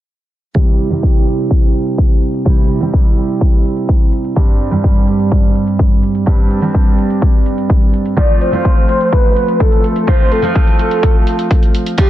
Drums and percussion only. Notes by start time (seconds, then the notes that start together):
0.55 kick, closed hi-hat
0.79 closed hi-hat
0.91 closed hi-hat
1.03 kick, closed hi-hat
1.15 closed hi-hat
1.27 closed hi-hat
1.39 closed hi-hat
1.51 kick, closed hi-hat
1.75 closed hi-hat
1.86 closed hi-hat
1.98 kick, closed hi-hat
2.10 closed hi-hat
2.22 closed hi-hat
2.34 closed hi-hat
2.46 kick, closed hi-hat
2.70 closed hi-hat
2.82 closed hi-hat
2.94 kick, closed hi-hat
3.05 closed hi-hat
3.17 closed hi-hat
3.29 closed hi-hat
3.41 kick, closed hi-hat
3.65 closed hi-hat
3.77 closed hi-hat
3.89 kick, closed hi-hat
4.01 closed hi-hat
4.13 closed hi-hat
4.25 closed hi-hat
4.36 kick, closed hi-hat
4.60 closed hi-hat
4.72 closed hi-hat
4.84 kick, closed hi-hat
4.96 closed hi-hat
5.08 closed hi-hat
5.20 closed hi-hat
5.32 kick, closed hi-hat
5.55 closed hi-hat
5.67 closed hi-hat
5.79 kick, closed hi-hat
5.91 closed hi-hat
6.03 closed hi-hat
6.15 closed hi-hat
6.27 kick, closed hi-hat
6.51 closed hi-hat
6.63 closed hi-hat
6.74 kick, closed hi-hat
6.86 closed hi-hat
6.98 closed hi-hat
7.10 closed hi-hat
7.22 kick, closed hi-hat
7.46 closed hi-hat
7.58 closed hi-hat
7.70 kick, closed hi-hat
7.82 closed hi-hat
7.94 closed hi-hat
8.06 closed hi-hat
8.17 kick, closed hi-hat
8.41 closed hi-hat
8.53 closed hi-hat
8.65 kick, closed hi-hat
8.77 closed hi-hat
8.89 closed hi-hat
9.01 closed hi-hat
9.13 kick, closed hi-hat
9.36 closed hi-hat
9.48 closed hi-hat
9.60 kick, closed hi-hat
9.72 closed hi-hat
9.84 closed hi-hat
9.96 closed hi-hat
10.08 kick, closed hi-hat
10.32 closed hi-hat
10.44 closed hi-hat
10.55 kick, closed hi-hat
10.67 closed hi-hat
10.79 closed hi-hat
10.91 closed hi-hat
11.03 kick, closed hi-hat
11.27 closed hi-hat
11.39 closed hi-hat
11.51 kick, closed hi-hat
11.63 closed hi-hat
11.75 closed hi-hat
11.86 closed hi-hat
11.98 kick, closed hi-hat